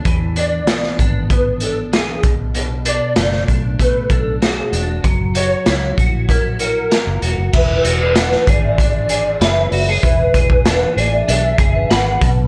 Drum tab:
CC |----------------|----------------|----------------|x---------------|
HH |x-x-x-x-x-x-x-x-|x-x-x-x-x-x-x-x-|x-x-x-x-x-x-x-x-|--x-x-x-x-x-x-o-|
SD |----oo------o---|----oo------o---|----o-------o---|----oo------o---|
BD |o-----o-o-----o-|------o-o-o-----|o-----o-o-------|o-----o-o-------|

CC |----------------|
HH |x-x-x-x-x-x-x-x-|
SD |----o-------o---|
BD |o-oo------o---o-|